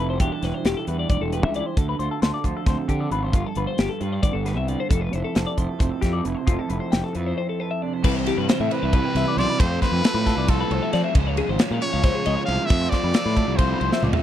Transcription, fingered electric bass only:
0.00 0.20 F1 medium
0.20 0.29 E1 medium
0.43 0.51 E1 medium
0.65 0.73 E1 medium
0.87 1.04 E2 medium
1.10 1.18 E1 medium
1.21 1.43 E1 medium
1.43 1.60 C#2 medium
1.77 1.94 D2 medium
1.99 2.08 D2 medium
2.22 2.30 D2 medium
2.44 2.53 D2 medium
2.66 2.75 D2 medium
2.89 3.06 D3 medium
3.11 3.33 G#1 medium
3.33 3.42 G1 medium
3.56 3.65 G1 medium
3.79 3.87 G1 medium
4.01 4.18 G2 medium
4.23 4.32 G1 medium
4.34 4.58 G1 medium
4.58 4.74 C2 medium
4.91 5.08 F1 medium
5.13 5.22 F1 medium
5.36 5.44 F1 medium
5.58 5.66 F1 medium
5.80 5.89 F1 medium
6.03 6.20 F2 medium
6.25 6.34 F1 medium
6.48 6.56 F1 medium
6.70 6.78 F1 loud
6.93 7.01 F1 medium
7.15 7.32 F2 medium
8.04 8.30 C2 loud
8.37 8.46 G2 medium
8.60 8.68 A2 medium
8.83 8.99 C2 medium
9.15 9.23 C2 loud
9.37 9.45 B1 loud
9.60 9.77 F2 loud
9.92 10.01 F2 loud
10.14 10.31 A2 loud
10.37 10.62 C2 medium
10.71 10.79 C2 medium
10.93 11.01 F3 medium
11.15 11.40 C#2 loud
11.49 11.57 G#1 medium
11.71 11.79 A#2 loud
11.94 12.10 C#2 medium
12.27 12.35 C#2 loud
12.48 12.56 C2 loud
12.70 12.87 F2 loud
13.03 13.12 F2 loud
13.26 13.42 A2 loud
13.48 13.73 C2 medium
13.81 13.89 C2 loud
14.03 14.11 C#2 medium

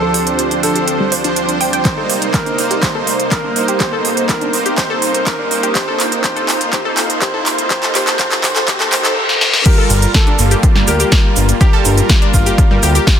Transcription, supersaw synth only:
0.00 0.60 F3 medium
0.00 0.60 D4 medium
0.00 0.60 C5 loud
0.63 1.22 F3 medium
0.63 1.22 D4 medium
0.63 1.22 C5 medium
1.24 1.82 F3 medium
1.24 1.82 D4 medium
1.24 1.82 C5 loud
1.85 2.55 A#3 medium
1.85 2.55 D#4 medium
1.85 2.55 C5 medium
2.58 2.81 A#3 medium
2.58 2.81 D#4 medium
2.58 2.81 C5 medium
2.83 3.53 A#3 medium
2.83 3.53 D#4 medium
2.83 3.53 C5 medium
3.56 3.78 A#3 medium
3.56 3.78 D#4 medium
3.56 3.78 C5 medium
3.80 4.51 A#3 medium
3.80 4.51 D#4 medium
3.80 4.51 C5 medium
4.53 4.76 A#3 medium
4.53 4.76 D#4 medium
4.53 4.76 C5 medium
4.78 5.48 A#3 medium
4.78 5.48 D#4 medium
4.78 5.48 C5 loud
5.51 5.74 A#3 medium
5.51 5.74 D#4 medium
5.51 5.74 C5 medium
5.75 6.22 A#3 medium
5.75 6.22 D#4 medium
5.75 6.22 C5 medium
6.24 6.71 A#3 medium
6.24 6.71 D#4 medium
6.24 6.71 C5 medium
6.73 7.20 A#3 medium
6.73 7.20 D#4 medium
6.73 7.20 C5 loud
7.22 7.69 A#3 medium
7.22 7.69 D#4 medium
7.22 7.69 C5 loud
7.70 7.93 A#3 medium
7.70 7.93 D#4 medium
7.70 7.93 C5 loud
7.95 8.17 A#3 loud
7.95 8.17 D#4 medium
7.95 8.17 C5 loud
8.19 8.42 A#3 medium
8.19 8.42 D#4 medium
8.19 8.42 C5 medium
8.44 8.66 A#3 medium
8.44 8.66 D#4 medium
8.44 8.66 C5 loud
8.68 8.91 A#3 medium
8.68 8.91 D#4 medium
8.68 8.91 C5 loud
8.92 9.15 A#3 loud
8.92 9.15 D#4 medium
8.92 9.15 C5 loud
9.66 10.36 G3 medium
9.66 10.36 F4 medium
9.66 10.36 A#4 loud
10.39 11.58 G3 medium
10.39 11.58 A#3 medium
10.39 11.58 F4 medium
11.61 12.31 G3 medium
11.61 12.31 F4 medium
11.61 12.31 A#4 loud
12.34 13.20 G3 medium
12.34 13.20 F4 medium
12.34 13.20 A#4 medium

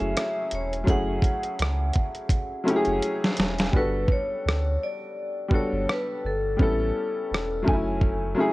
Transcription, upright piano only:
0.00 0.84 F#3 medium
0.00 0.85 A3 medium
0.00 0.87 C#4 medium
0.00 0.88 E4 medium
0.00 0.52 G#4 medium
0.00 0.89 G#5 medium
0.84 1.81 F#3 medium
0.84 1.82 A3 medium
0.84 1.83 C#4 medium
0.88 1.83 E4 medium
0.88 1.84 G#4 medium
2.64 3.36 F#3 medium
2.64 3.36 A3 medium
2.64 3.37 C#4 medium
2.68 3.38 E4 medium
2.68 2.75 G4 medium
2.76 3.42 G#4 loud
3.71 4.68 G3 medium
3.71 4.68 B3 medium
3.71 4.69 D4 medium
3.76 4.70 F#4 medium
3.76 4.71 A4 medium
5.48 6.21 G3 medium
5.48 6.21 B3 medium
5.48 6.22 D4 medium
5.53 6.23 F#4 medium
5.53 6.24 A4 medium
6.56 7.53 G3 medium
6.56 7.54 B3 medium
6.56 7.55 C#4 medium
6.61 7.55 E4 medium
6.61 7.56 A4 loud
7.63 8.23 F#3 medium
7.63 8.24 A3 medium
7.63 8.25 C#4 medium
7.67 7.74 D#4 medium
7.67 8.26 G#5 medium
7.73 8.29 E4 medium
8.35 8.53 F#3 medium
8.35 8.53 A3 medium
8.35 8.53 C#4 medium
8.39 8.53 E4 medium
8.39 8.53 G#4 loud

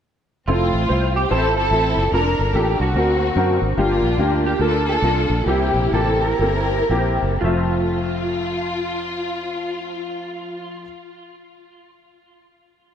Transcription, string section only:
0.49 1.27 A3 medium
0.49 1.27 C4 medium
0.49 1.12 F4 medium
1.16 1.31 G4 medium
1.30 1.55 C4 medium
1.30 1.56 E4 medium
1.30 1.56 A4 loud
1.57 2.09 C4 medium
1.57 2.09 E4 medium
1.57 2.09 A4 loud
2.13 2.91 D4 medium
2.13 2.54 A#4 loud
2.54 2.80 G4 medium
2.80 3.58 A#3 medium
2.80 3.58 C4 medium
2.80 3.62 F#4 medium
3.78 4.57 A#3 medium
3.78 4.57 D4 medium
3.78 4.41 F4 medium
4.45 4.60 G4 medium
4.60 4.86 D4 medium
4.60 4.86 F4 medium
4.60 4.86 A4 medium
4.87 5.43 D4 medium
4.87 5.43 F4 medium
4.87 5.43 A4 medium
5.47 6.36 A#3 medium
5.47 6.21 E4 medium
5.47 5.92 G4 medium
5.92 6.22 A4 medium
6.22 7.19 E4 medium
6.22 7.19 G4 medium
6.22 7.22 A#4 medium
7.43 10.80 F4 medium

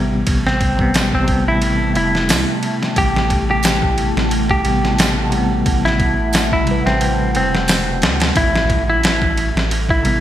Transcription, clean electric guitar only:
0.47 1.06 C4 loud
1.15 1.44 C4 medium
1.48 1.92 E4 medium
1.97 2.85 E4 medium
2.98 3.44 G4 loud
3.51 4.10 G4 loud
4.51 5.10 G4 medium
5.85 6.45 E4 medium
6.53 6.82 E4 medium
6.86 7.30 C4 medium
7.37 8.24 C4 medium
8.37 8.83 E4 medium
8.90 9.49 E4 medium
9.90 10.20 E4 medium

